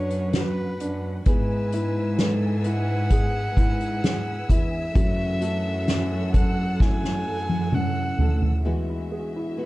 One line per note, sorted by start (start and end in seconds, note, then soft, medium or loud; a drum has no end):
0.00 0.77 F#2 medium
0.00 1.23 F#3 medium
0.00 1.26 F#3 medium
0.00 1.26 B3 medium
0.00 0.81 D4 medium
0.00 1.27 D4 medium
0.00 0.36 F#4 soft
0.00 1.27 F#4 medium
0.00 1.24 B4 medium
0.00 0.38 C#5 medium
0.00 1.22 F#5 medium
0.10 closed hi-hat soft
0.33 1.24 F#4 soft
0.33 1.05 B4 medium
0.33 snare loud
0.33 closed hi-hat medium
0.80 1.23 F#2 medium
0.80 1.25 D4 medium
0.80 closed hi-hat medium
1.26 3.53 G#2 loud
1.26 1.73 G#3 medium
1.26 1.73 B3 medium
1.26 4.92 B3 medium
1.26 1.72 E4 medium
1.26 1.73 G#4 medium
1.26 4.93 B4 medium
1.26 2.22 B4 medium
1.26 4.93 G#5 medium
1.26 8.62 E6 medium
1.26 kick loud
1.26 closed hi-hat medium
1.72 3.11 B3 soft
1.72 3.13 E4 soft
1.72 2.64 E4 medium
1.72 closed hi-hat medium
2.18 2.67 A4 medium
2.18 4.00 B4 soft
2.18 snare medium
2.18 closed hi-hat medium
2.64 3.57 E4 soft
2.64 4.52 F#5 loud
2.64 closed hi-hat medium
3.10 4.95 G#3 soft
3.10 4.95 B3 medium
3.10 4.95 E4 medium
3.10 4.03 G#4 medium
3.10 kick medium
3.10 closed hi-hat medium
3.15 4.96 G#4 medium
3.57 4.45 G#2 medium
3.57 4.49 E4 soft
3.57 kick medium
3.57 closed hi-hat medium
3.80 closed hi-hat soft
4.04 4.93 G#4 soft
4.04 snare loud
4.04 closed hi-hat medium
4.49 4.92 E2 medium
4.49 4.95 E4 soft
4.49 6.34 E5 loud
4.49 kick medium
4.49 closed hi-hat medium
4.95 5.41 F#2 medium
4.95 7.22 F#2 loud
4.95 5.42 C#3 medium
4.95 5.42 E3 medium
4.95 8.61 F#3 medium
4.95 5.41 A3 medium
4.95 5.41 C#4 medium
4.95 5.40 F#4 medium
4.95 8.62 A4 medium
4.95 8.62 F#5 medium
4.95 kick loud
4.95 closed hi-hat medium
5.41 6.78 E3 soft
5.41 6.79 A3 soft
5.41 6.80 C#4 soft
5.41 6.82 F#4 soft
5.41 6.33 A4 medium
5.41 closed hi-hat medium
5.88 7.69 C#4 medium
5.88 snare medium
5.88 closed hi-hat medium
6.34 7.26 A4 soft
6.34 6.82 F#5 medium
6.34 kick medium
6.34 closed hi-hat medium
6.79 8.65 E3 medium
6.79 8.65 A3 medium
6.79 8.66 C#4 medium
6.79 8.61 E4 medium
6.79 7.75 G#5 medium
6.79 kick medium
6.79 snare soft
6.84 8.66 F#4 medium
7.04 snare soft
7.26 8.15 F#2 medium
7.26 8.18 A4 soft
7.49 high tom medium
7.72 8.62 C#4 soft
7.72 8.42 F#5 medium
7.72 mid tom medium
8.19 8.62 D2 medium
8.19 8.64 A4 soft
8.19 floor tom medium
8.42 floor tom medium
8.65 9.62 E3 medium
8.65 9.66 E3 soft
8.65 9.57 G#3 medium
8.65 9.57 B3 medium
8.65 9.58 E4 medium
8.65 9.66 F#4 medium
8.65 9.58 F#4 medium
8.65 9.66 G#4 soft
8.65 9.66 E5 medium
8.89 9.35 E4 soft
9.12 9.66 G#4 soft
9.36 9.66 E4 soft
9.57 9.66 G#3 soft
9.57 9.66 B3 soft
9.57 9.66 E4 medium
9.57 9.66 F#4 medium
9.57 9.66 B4 soft